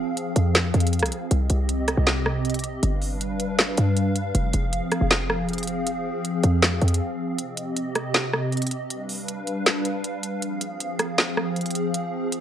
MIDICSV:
0, 0, Header, 1, 4, 480
1, 0, Start_track
1, 0, Tempo, 379747
1, 1655, Time_signature, 4, 2, 24, 8
1, 15680, End_track
2, 0, Start_track
2, 0, Title_t, "Analog synth pad"
2, 0, Program_c, 0, 89
2, 0, Note_on_c, 0, 53, 80
2, 0, Note_on_c, 0, 60, 73
2, 0, Note_on_c, 0, 68, 72
2, 0, Note_on_c, 0, 77, 89
2, 1604, Note_off_c, 0, 77, 0
2, 1617, Note_off_c, 0, 53, 0
2, 1617, Note_off_c, 0, 68, 0
2, 1618, Note_off_c, 0, 60, 0
2, 1656, Note_on_c, 0, 60, 72
2, 1657, Note_on_c, 0, 48, 81
2, 1658, Note_on_c, 0, 67, 74
2, 1658, Note_on_c, 0, 75, 87
2, 3556, Note_off_c, 0, 60, 0
2, 3557, Note_off_c, 0, 48, 0
2, 3557, Note_off_c, 0, 67, 0
2, 3557, Note_off_c, 0, 75, 0
2, 3576, Note_on_c, 0, 55, 83
2, 3576, Note_on_c, 0, 62, 73
2, 3576, Note_on_c, 0, 71, 76
2, 3576, Note_on_c, 0, 77, 91
2, 5476, Note_off_c, 0, 55, 0
2, 5476, Note_off_c, 0, 71, 0
2, 5477, Note_off_c, 0, 62, 0
2, 5496, Note_on_c, 0, 53, 82
2, 5496, Note_on_c, 0, 60, 73
2, 5496, Note_on_c, 0, 68, 74
2, 9285, Note_off_c, 0, 77, 0
2, 9297, Note_off_c, 0, 53, 0
2, 9297, Note_off_c, 0, 68, 0
2, 9337, Note_on_c, 0, 75, 89
2, 9338, Note_on_c, 0, 48, 80
2, 9338, Note_on_c, 0, 67, 73
2, 11205, Note_off_c, 0, 60, 0
2, 11237, Note_off_c, 0, 48, 0
2, 11237, Note_off_c, 0, 67, 0
2, 11237, Note_off_c, 0, 75, 0
2, 11254, Note_on_c, 0, 55, 80
2, 11254, Note_on_c, 0, 62, 73
2, 11254, Note_on_c, 0, 71, 74
2, 11255, Note_on_c, 0, 77, 90
2, 13155, Note_off_c, 0, 55, 0
2, 13155, Note_off_c, 0, 62, 0
2, 13156, Note_off_c, 0, 71, 0
2, 13173, Note_on_c, 0, 60, 73
2, 13175, Note_on_c, 0, 53, 80
2, 13175, Note_on_c, 0, 68, 75
2, 15680, Note_off_c, 0, 53, 0
2, 15680, Note_off_c, 0, 60, 0
2, 15680, Note_off_c, 0, 68, 0
2, 15680, Note_off_c, 0, 77, 0
2, 15680, End_track
3, 0, Start_track
3, 0, Title_t, "808-style bass"
3, 0, Program_c, 1, 38
3, 455, Note_on_c, 1, 41, 101
3, 916, Note_off_c, 1, 41, 0
3, 935, Note_on_c, 1, 41, 110
3, 1295, Note_on_c, 1, 36, 100
3, 1314, Note_off_c, 1, 41, 0
3, 1409, Note_off_c, 1, 36, 0
3, 1656, Note_on_c, 1, 36, 113
3, 1886, Note_off_c, 1, 36, 0
3, 1895, Note_on_c, 1, 36, 101
3, 2471, Note_off_c, 1, 36, 0
3, 2495, Note_on_c, 1, 36, 102
3, 3531, Note_off_c, 1, 36, 0
3, 3575, Note_on_c, 1, 31, 106
3, 4727, Note_off_c, 1, 31, 0
3, 4775, Note_on_c, 1, 43, 102
3, 5466, Note_off_c, 1, 43, 0
3, 5494, Note_on_c, 1, 29, 112
3, 5725, Note_off_c, 1, 29, 0
3, 5735, Note_on_c, 1, 29, 104
3, 6081, Note_off_c, 1, 29, 0
3, 6334, Note_on_c, 1, 29, 102
3, 7724, Note_off_c, 1, 29, 0
3, 8135, Note_on_c, 1, 41, 103
3, 8596, Note_off_c, 1, 41, 0
3, 8615, Note_on_c, 1, 41, 107
3, 8855, Note_off_c, 1, 41, 0
3, 15680, End_track
4, 0, Start_track
4, 0, Title_t, "Drums"
4, 216, Note_on_c, 9, 42, 78
4, 342, Note_off_c, 9, 42, 0
4, 454, Note_on_c, 9, 42, 61
4, 580, Note_off_c, 9, 42, 0
4, 694, Note_on_c, 9, 42, 69
4, 695, Note_on_c, 9, 38, 109
4, 703, Note_on_c, 9, 39, 87
4, 820, Note_off_c, 9, 42, 0
4, 822, Note_off_c, 9, 38, 0
4, 830, Note_off_c, 9, 39, 0
4, 935, Note_on_c, 9, 42, 50
4, 1015, Note_off_c, 9, 42, 0
4, 1015, Note_on_c, 9, 42, 70
4, 1095, Note_off_c, 9, 42, 0
4, 1095, Note_on_c, 9, 42, 83
4, 1175, Note_off_c, 9, 42, 0
4, 1175, Note_on_c, 9, 42, 62
4, 1255, Note_off_c, 9, 42, 0
4, 1255, Note_on_c, 9, 42, 60
4, 1296, Note_on_c, 9, 37, 92
4, 1335, Note_off_c, 9, 42, 0
4, 1335, Note_on_c, 9, 42, 63
4, 1414, Note_off_c, 9, 42, 0
4, 1414, Note_on_c, 9, 42, 77
4, 1423, Note_off_c, 9, 37, 0
4, 1541, Note_off_c, 9, 42, 0
4, 1655, Note_on_c, 9, 42, 90
4, 1782, Note_off_c, 9, 42, 0
4, 1892, Note_on_c, 9, 42, 79
4, 2018, Note_off_c, 9, 42, 0
4, 2136, Note_on_c, 9, 42, 78
4, 2262, Note_off_c, 9, 42, 0
4, 2373, Note_on_c, 9, 42, 61
4, 2375, Note_on_c, 9, 37, 71
4, 2500, Note_off_c, 9, 42, 0
4, 2502, Note_off_c, 9, 37, 0
4, 2613, Note_on_c, 9, 42, 69
4, 2614, Note_on_c, 9, 38, 104
4, 2622, Note_on_c, 9, 39, 84
4, 2739, Note_off_c, 9, 42, 0
4, 2741, Note_off_c, 9, 38, 0
4, 2749, Note_off_c, 9, 39, 0
4, 2855, Note_on_c, 9, 37, 91
4, 2982, Note_off_c, 9, 37, 0
4, 3095, Note_on_c, 9, 42, 46
4, 3155, Note_off_c, 9, 42, 0
4, 3155, Note_on_c, 9, 42, 56
4, 3215, Note_off_c, 9, 42, 0
4, 3215, Note_on_c, 9, 42, 66
4, 3275, Note_off_c, 9, 42, 0
4, 3275, Note_on_c, 9, 42, 75
4, 3333, Note_off_c, 9, 42, 0
4, 3333, Note_on_c, 9, 42, 74
4, 3460, Note_off_c, 9, 42, 0
4, 3575, Note_on_c, 9, 42, 91
4, 3701, Note_off_c, 9, 42, 0
4, 3812, Note_on_c, 9, 46, 81
4, 3938, Note_off_c, 9, 46, 0
4, 4056, Note_on_c, 9, 42, 78
4, 4182, Note_off_c, 9, 42, 0
4, 4293, Note_on_c, 9, 42, 62
4, 4420, Note_off_c, 9, 42, 0
4, 4533, Note_on_c, 9, 42, 71
4, 4535, Note_on_c, 9, 38, 106
4, 4543, Note_on_c, 9, 39, 85
4, 4660, Note_off_c, 9, 42, 0
4, 4661, Note_off_c, 9, 38, 0
4, 4669, Note_off_c, 9, 39, 0
4, 4771, Note_on_c, 9, 42, 82
4, 4897, Note_off_c, 9, 42, 0
4, 5013, Note_on_c, 9, 42, 70
4, 5139, Note_off_c, 9, 42, 0
4, 5253, Note_on_c, 9, 42, 77
4, 5379, Note_off_c, 9, 42, 0
4, 5495, Note_on_c, 9, 42, 91
4, 5621, Note_off_c, 9, 42, 0
4, 5731, Note_on_c, 9, 42, 81
4, 5857, Note_off_c, 9, 42, 0
4, 5976, Note_on_c, 9, 42, 78
4, 6102, Note_off_c, 9, 42, 0
4, 6213, Note_on_c, 9, 42, 62
4, 6215, Note_on_c, 9, 37, 68
4, 6340, Note_off_c, 9, 42, 0
4, 6342, Note_off_c, 9, 37, 0
4, 6454, Note_on_c, 9, 42, 69
4, 6456, Note_on_c, 9, 38, 106
4, 6464, Note_on_c, 9, 39, 85
4, 6581, Note_off_c, 9, 42, 0
4, 6582, Note_off_c, 9, 38, 0
4, 6590, Note_off_c, 9, 39, 0
4, 6695, Note_on_c, 9, 37, 91
4, 6822, Note_off_c, 9, 37, 0
4, 6934, Note_on_c, 9, 42, 45
4, 6995, Note_off_c, 9, 42, 0
4, 6995, Note_on_c, 9, 42, 57
4, 7055, Note_off_c, 9, 42, 0
4, 7055, Note_on_c, 9, 42, 66
4, 7114, Note_off_c, 9, 42, 0
4, 7114, Note_on_c, 9, 42, 79
4, 7172, Note_off_c, 9, 42, 0
4, 7172, Note_on_c, 9, 42, 75
4, 7299, Note_off_c, 9, 42, 0
4, 7415, Note_on_c, 9, 42, 93
4, 7541, Note_off_c, 9, 42, 0
4, 7896, Note_on_c, 9, 42, 77
4, 8022, Note_off_c, 9, 42, 0
4, 8133, Note_on_c, 9, 42, 61
4, 8260, Note_off_c, 9, 42, 0
4, 8373, Note_on_c, 9, 42, 69
4, 8375, Note_on_c, 9, 38, 109
4, 8383, Note_on_c, 9, 39, 87
4, 8500, Note_off_c, 9, 42, 0
4, 8501, Note_off_c, 9, 38, 0
4, 8509, Note_off_c, 9, 39, 0
4, 8614, Note_on_c, 9, 42, 49
4, 8695, Note_off_c, 9, 42, 0
4, 8695, Note_on_c, 9, 42, 70
4, 8775, Note_off_c, 9, 42, 0
4, 8775, Note_on_c, 9, 42, 85
4, 8902, Note_off_c, 9, 42, 0
4, 9334, Note_on_c, 9, 42, 92
4, 9461, Note_off_c, 9, 42, 0
4, 9571, Note_on_c, 9, 42, 75
4, 9698, Note_off_c, 9, 42, 0
4, 9815, Note_on_c, 9, 42, 75
4, 9941, Note_off_c, 9, 42, 0
4, 10053, Note_on_c, 9, 42, 61
4, 10055, Note_on_c, 9, 37, 69
4, 10179, Note_off_c, 9, 42, 0
4, 10181, Note_off_c, 9, 37, 0
4, 10293, Note_on_c, 9, 42, 70
4, 10294, Note_on_c, 9, 38, 106
4, 10302, Note_on_c, 9, 39, 86
4, 10419, Note_off_c, 9, 42, 0
4, 10421, Note_off_c, 9, 38, 0
4, 10429, Note_off_c, 9, 39, 0
4, 10534, Note_on_c, 9, 37, 90
4, 10661, Note_off_c, 9, 37, 0
4, 10774, Note_on_c, 9, 42, 45
4, 10833, Note_off_c, 9, 42, 0
4, 10833, Note_on_c, 9, 42, 57
4, 10894, Note_off_c, 9, 42, 0
4, 10894, Note_on_c, 9, 42, 69
4, 10954, Note_off_c, 9, 42, 0
4, 10954, Note_on_c, 9, 42, 78
4, 11012, Note_off_c, 9, 42, 0
4, 11012, Note_on_c, 9, 42, 77
4, 11138, Note_off_c, 9, 42, 0
4, 11254, Note_on_c, 9, 42, 93
4, 11380, Note_off_c, 9, 42, 0
4, 11491, Note_on_c, 9, 46, 84
4, 11617, Note_off_c, 9, 46, 0
4, 11735, Note_on_c, 9, 42, 78
4, 11861, Note_off_c, 9, 42, 0
4, 11972, Note_on_c, 9, 42, 61
4, 12099, Note_off_c, 9, 42, 0
4, 12213, Note_on_c, 9, 42, 69
4, 12215, Note_on_c, 9, 38, 109
4, 12223, Note_on_c, 9, 39, 82
4, 12340, Note_off_c, 9, 42, 0
4, 12341, Note_off_c, 9, 38, 0
4, 12349, Note_off_c, 9, 39, 0
4, 12451, Note_on_c, 9, 42, 82
4, 12577, Note_off_c, 9, 42, 0
4, 12694, Note_on_c, 9, 42, 72
4, 12820, Note_off_c, 9, 42, 0
4, 12933, Note_on_c, 9, 42, 76
4, 13060, Note_off_c, 9, 42, 0
4, 13174, Note_on_c, 9, 42, 91
4, 13301, Note_off_c, 9, 42, 0
4, 13412, Note_on_c, 9, 42, 80
4, 13539, Note_off_c, 9, 42, 0
4, 13656, Note_on_c, 9, 42, 79
4, 13782, Note_off_c, 9, 42, 0
4, 13894, Note_on_c, 9, 42, 63
4, 13896, Note_on_c, 9, 37, 70
4, 14020, Note_off_c, 9, 42, 0
4, 14022, Note_off_c, 9, 37, 0
4, 14134, Note_on_c, 9, 42, 67
4, 14135, Note_on_c, 9, 38, 106
4, 14143, Note_on_c, 9, 39, 87
4, 14260, Note_off_c, 9, 42, 0
4, 14262, Note_off_c, 9, 38, 0
4, 14270, Note_off_c, 9, 39, 0
4, 14375, Note_on_c, 9, 37, 91
4, 14502, Note_off_c, 9, 37, 0
4, 14615, Note_on_c, 9, 42, 45
4, 14675, Note_off_c, 9, 42, 0
4, 14675, Note_on_c, 9, 42, 55
4, 14735, Note_off_c, 9, 42, 0
4, 14735, Note_on_c, 9, 42, 67
4, 14795, Note_off_c, 9, 42, 0
4, 14795, Note_on_c, 9, 42, 79
4, 14854, Note_off_c, 9, 42, 0
4, 14854, Note_on_c, 9, 42, 73
4, 14980, Note_off_c, 9, 42, 0
4, 15095, Note_on_c, 9, 42, 93
4, 15221, Note_off_c, 9, 42, 0
4, 15576, Note_on_c, 9, 42, 78
4, 15680, Note_off_c, 9, 42, 0
4, 15680, End_track
0, 0, End_of_file